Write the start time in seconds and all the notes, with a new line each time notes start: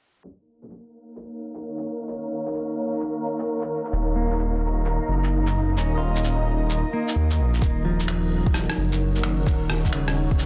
0.23 A#3 D#4 A#4 C#5 A#5, shaker
0.62 shaker
0.70 shaker
1.16 shaker
1.55 shaker
1.78 shaker
2.08 shaker
2.47 shaker
2.54 shaker
3.01 shaker
3.39 shaker
3.62 shaker
3.85 shaker
3.92 D#1 D#5, shaker
4.16 A#3
4.31 shaker
4.39 shaker
4.85 shaker
5.08 F#1
5.24 shaker
5.47 shaker
5.77 D#1 C#4, shaker
5.98 F4
6.16 shaker
6.24 shaker
6.70 shaker
6.93 A#3
7.08 shaker
7.16 D#2
7.31 shaker
7.39 A#1
7.54 shaker
7.62 D#1 D#4 A#4 C#5 F#5, kick, shaker
7.85 F3
8.00 shaker
8.08 finger snap, shaker
8.46 kick
8.54 cross-stick, shaker
8.70 cross-stick
8.77 F#1
8.92 shaker
9.16 shaker
9.23 D#3, finger snap
9.46 D#1, kick, shaker
9.70 cross-stick
9.85 kick, shaker
9.92 C#3, finger snap
10.08 cross-stick
10.31 kick
10.39 shaker